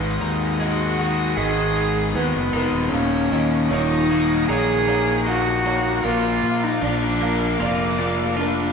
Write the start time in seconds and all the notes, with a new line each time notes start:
Already playing: G#1 G#2 D#3 G#3 D#4 G#4 B4 F#5 G#5 D#6
0.21 D#2 D#4
0.59 G#2 D#3 G#3 F#4 D#5
0.98 G#2 D#3 G#3 F#5
1.35 G#1 G#2 D#3 B3 G#4 D#5
1.39 G#3
1.76 D#4
2.13 D#2 G#2 D#3 G#3 B3 B4
2.34 F#1
2.53 F1 G#2 D#3 G#3 D#4 A#4
2.73 D#1
2.89 D#1 D#2 A#2 D#3 C#4 A#4 F#5 D#6
2.94 D#2 C#6
3.31 D#2 A#2 D#3 D#5
3.70 D#1 D#2 A#2 D#3 D#4 C#5
4.10 D#2 A#2 D#3 F#3
4.47 A#1 D#2 A#2 D#3 D#4 G#4 C#5
4.87 D#2 A#2 D#3 A#3 C#5
5.26 D#2 A#2 D#3 D#4 F#4
5.65 D#2 A#2 D#3 A#3 C#5
6.04 A#1 A#2 F3 A#3 F4 G#4 A#4 F5 A#5 D6
6.43 A#2 F3 A#3
6.64 D#4
6.82 A#1 A#2 F3 A#3 D4 D5
7.21 A#2 F3 A#3 F5
7.59 F1 A#2 F3 A#3 F4 D5
7.98 A#2 F3 A#3 D4
8.37 A#2 F3 A#3 D4 F4 A#4